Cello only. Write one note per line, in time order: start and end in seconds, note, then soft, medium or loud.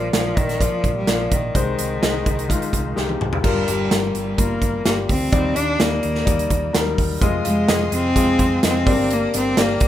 0.00 0.15 F3 medium
0.16 0.39 F3 medium
0.38 0.63 D#3 medium
0.61 0.96 F3 medium
0.97 1.10 G3 medium
1.09 1.34 F3 medium
1.33 3.21 D#3 medium
3.45 3.66 G3 medium
3.68 4.40 G3 medium
4.39 4.85 A#3 medium
4.86 4.96 A#3 medium
5.09 5.57 C4 medium
5.56 5.82 D4 medium
5.81 6.75 A#3 medium
7.23 7.33 G#3 medium
7.46 7.89 G#3 medium
7.95 8.60 C4 loud
8.67 9.15 C4 loud
9.14 9.36 A#3 medium
9.37 9.63 C4 medium
9.61 9.88 A#3 medium